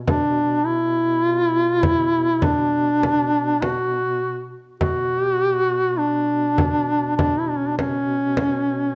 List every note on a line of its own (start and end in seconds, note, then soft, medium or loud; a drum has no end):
0.00 4.63 B2 soft
0.07 0.67 D4 medium
0.07 frame drum medium
0.66 1.29 E4 loud
1.29 1.46 F4 loud
1.46 1.64 E4 loud
1.64 1.81 F4 loud
1.81 2.45 E4 loud
1.81 frame drum medium
2.42 3.63 D4 medium
2.42 frame drum medium
3.03 frame drum soft
3.62 4.51 F#4 medium
3.62 frame drum medium
4.80 8.95 B2 soft
4.80 6.00 F#4 medium
4.80 frame drum medium
5.98 7.16 D4 medium
6.58 frame drum medium
7.17 7.41 D4 medium
7.17 frame drum medium
7.39 7.51 E4 medium
7.49 7.60 D4 medium
7.58 7.69 C#4 medium
7.67 7.77 D4 medium
7.77 8.95 C#4 medium
7.77 frame drum medium
8.37 frame drum medium